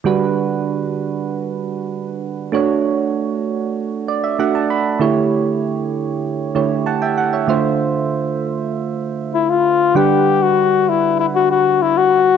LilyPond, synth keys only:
\new Staff \with { instrumentName = "Synth keys" } { \time 4/4 \key g \lydian \tempo 4 = 97 << { r1 | r2 r8 d''16 e''16 fis''16 a''16 b''8 | r2. <fis'' a''>16 <e'' g''>16 fis''16 <cis'' e''>16~ | <cis'' e''>16 r2. r8. |
r1 | } \\ { <d g d' fis' b'>1 | <a d' fis' cis''>2. <a d' fis' e''>4 | <d a e' g' cis''>2~ <d a e' g' cis''>8 <d a e' g' cis''>4. | <d a f' c'' e''>1 |
<d g d' b' fis''>1 | } >> }